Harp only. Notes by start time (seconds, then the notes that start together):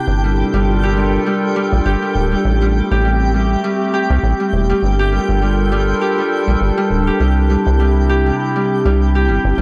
0.24 G3
0.54 G3
0.83 G4
0.97 G3
1.26 G3
1.56 G3
1.86 G4
2.02 G3
2.32 G3
2.62 G3
2.91 G4
3.04 G3
3.34 G3
3.64 G3
3.94 G4
4.10 G3
4.40 G3
4.70 G3
4.99 G4
5.12 G3
5.42 G3
5.72 G3
6.01 G4
6.18 G3
6.48 G3
6.78 G3
7.07 G4
7.20 G3
7.50 G3
7.80 G3
8.09 G4
8.26 G3
8.56 G3
8.85 G3
9.15 G4
9.28 G3
9.58 G3